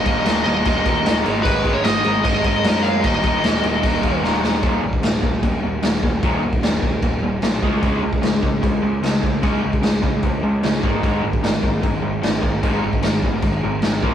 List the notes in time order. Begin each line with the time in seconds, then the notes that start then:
Already playing: D#5
0.06 D#1 D#2 A#2 D#3, kick, crash
0.26 D#1 D#2 A#2 D#3, snare, crash
0.44 D#1 D#2 A#2 D#3 D#5, crash
0.65 D#1 D#2 A#2 D#3, kick, crash
0.85 D#1 D#2 A#2 D#3, kick, crash
1.05 D#1 D#2 A#2 D#3, snare, crash
1.24 G#1 G#2 D#3 G#3, crash
1.43 G#1 G#2 D#3 G#3 B4, kick, crash
1.64 G#1 G#2 D#3 G#3, kick, crash
1.73 C#5
1.84 G#1 G#2 D#3 G#3 D#5, snare, crash
2.04 G#1 G#2 D#3 G#3, crash
2.23 G#1 G#2 D#3 G#3 D#5, kick, crash
2.44 G#1 G#2 D#3 G#3, kick, crash
2.64 F#2 G#2 D#3 G#3, snare, crash
2.83 G#2 D#3 G#3 F5, crash
3.04 D#1 D#2 A#2 D#3 D#5, kick, crash
3.23 D#1 D#2 A#2 D#3, kick, crash
3.43 D#1 D#2 A#2 D#3, snare, crash
3.63 D#1 D#2 A#2 D#3, crash
3.83 D#1 D#2 A#2 D#3, kick, crash
4.03 D#1 D#2 A#2 D#3, kick, crash
4.23 D#1 D#2 A#2 D#3, snare
4.43 D#1 D#2 A#2 D#3, snare
4.63 D#1 D#2 A#2 D#3, kick, crash
4.83 D#1 D#2 A#2
4.93 kick
5.02 D#1 D#2 A#2, snare, crash
5.22 D#1 D#2 A#2, kick
5.43 D#1 D#2 A#2, kick, crash
5.62 D#1 D#2 A#2
5.83 D#1 D#2 A#2, snare, crash
6.03 D#1 D#2 A#2, kick
6.23 D#1 D#2 A#2 D#3, kick, crash
6.43 D#1 D#2 A#2
6.53 kick
6.63 D#1 D#2 A#2, snare, crash
6.83 D#1 D#2 A#2, kick
7.02 D#1 D#2 A#2, kick, crash
7.21 D#1 D#2 A#2
7.42 B1 D#2 A#2, snare, crash
7.62 C#2 C#3 G#3 C#4, kick
7.82 C#2 C#3 G#3 C#4, kick, crash
8.02 C#2 C#3 G#3
8.13 kick
8.22 C#2 C#3 G#3, snare, crash
8.43 C#2 C#3 G#3, kick
8.62 C#2 C#3 G#3, kick, crash
8.82 C#2 C#3 G#3
9.02 C#2 C#3 G#3, snare, crash
9.22 C#2 C#3 G#3, kick
9.42 C#2 C#3 G#3 C#4, kick, crash
9.62 C#2 C#3 G#3
9.73 kick
9.82 C#2 C#3 G#3, snare, crash
10.02 C#2 C#3 G#3, kick
10.23 C#2 C#3 G#3, kick, crash
10.43 C#2 C#3 G#3
10.63 C#2 C#3 G#3, snare, crash
10.82 G#1 G#2 D#3 G#3, kick
11.03 G#1 G#2 D#3 G#3, kick, crash
11.22 G#1 G#2 D#3
11.33 kick
11.43 G#1 G#2 D#3, snare, crash
11.63 G#1 G#2 D#3, kick
11.82 G#1 G#2 D#3, kick, crash
12.02 G#1 G#2 D#3
12.22 G#1 G#2 D#3, snare, crash
12.41 G#1 G#2 D#3, kick
12.63 G#1 G#2 D#3 G#3, kick, crash
12.83 G#1 G#2 D#3
12.93 kick
13.03 G#1 G#2 D#3, snare, crash
13.23 G#1 G#2 D#3, kick
13.42 G#1 G#2 D#3, kick, crash
13.63 G#1 G#2 D#3
13.82 G#1 G#2 D#3, snare, crash
14.03 A#1 A#2 F3 A#3, kick